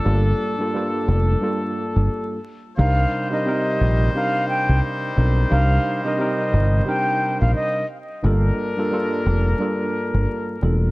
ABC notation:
X:1
M:4/4
L:1/16
Q:"Swing 16ths" 1/4=88
K:Cdor
V:1 name="Flute"
z16 | f3 e4- e f2 g2 z4 | f3 e4- e g3 f e2 z2 | z16 |]
V:2 name="Trumpet section"
[DA]12- [DA]2 z2 | [G,Ec]16- | [G,Ec]12- [G,Ec]2 z2 | [DB]12- [DB]2 z2 |]
V:3 name="Tine electric piano"
[G,,G,B,FA]3 [G,,G,B,FA] [G,,G,B,FA]4 [G,,G,B,FA]6 z2 | [C,G,DEB]3 [C,G,DEB] [C,G,CEB]4 [C,G,DEB]6 [G,CDEB]2 | [C,G,DEB]3 [C,G,DEB] [C,G,CEB]4 [C,G,DEB]6 z2 | [G,,G,B,FA]3 [G,,G,B,FA] [G,,G,B,FA]4 [G,,G,B,FA]6 [G,,G,B,FA]2 |]
V:4 name="Fingered electric bass" clef=bass
G,,,2 z4 F,,,2 z3 G,,, z4 | C,,2 z4 B,,,2 z3 C,, z2 =B,,,2 | C,,2 z4 G,,,2 z3 B,,, z4 | G,,,2 z4 F,,,2 z3 G,,, z2 =E,,,2 |]